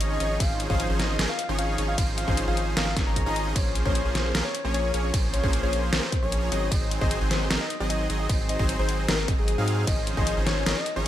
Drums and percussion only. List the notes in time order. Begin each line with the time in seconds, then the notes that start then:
0.01 closed hi-hat
0.20 closed hi-hat
0.40 kick, closed hi-hat, crash
0.60 closed hi-hat
0.70 kick
0.80 closed hi-hat
0.99 snare, closed hi-hat
1.19 snare, closed hi-hat, crash
1.39 closed hi-hat
1.59 closed hi-hat
1.78 closed hi-hat
1.98 kick, closed hi-hat, crash
2.18 closed hi-hat
2.28 kick
2.37 closed hi-hat
2.57 closed hi-hat
2.77 snare, closed hi-hat, crash
2.96 kick, snare, closed hi-hat
3.16 kick, closed hi-hat
3.36 closed hi-hat
3.56 kick, closed hi-hat, crash
3.75 closed hi-hat
3.86 kick
3.95 closed hi-hat
4.15 snare, closed hi-hat
4.35 snare, closed hi-hat, crash
4.55 closed hi-hat
4.74 closed hi-hat
4.94 closed hi-hat
5.14 kick, closed hi-hat, crash
5.34 closed hi-hat
5.44 kick
5.53 closed hi-hat
5.73 closed hi-hat
5.93 snare, closed hi-hat, crash
6.12 kick, closed hi-hat
6.32 closed hi-hat
6.52 closed hi-hat
6.71 kick, closed hi-hat, crash
6.91 closed hi-hat
7.01 kick
7.11 closed hi-hat
7.31 snare, closed hi-hat
7.51 snare, closed hi-hat, crash
7.70 closed hi-hat
7.90 closed hi-hat
8.10 closed hi-hat
8.29 kick, closed hi-hat, crash
8.49 closed hi-hat
8.59 kick
8.69 closed hi-hat
8.89 closed hi-hat
9.09 snare, closed hi-hat, crash
9.28 kick, closed hi-hat
9.48 closed hi-hat
9.68 closed hi-hat
9.87 kick, closed hi-hat, crash
10.07 closed hi-hat
10.17 kick
10.27 closed hi-hat
10.47 snare, closed hi-hat
10.66 snare, closed hi-hat, crash
10.86 closed hi-hat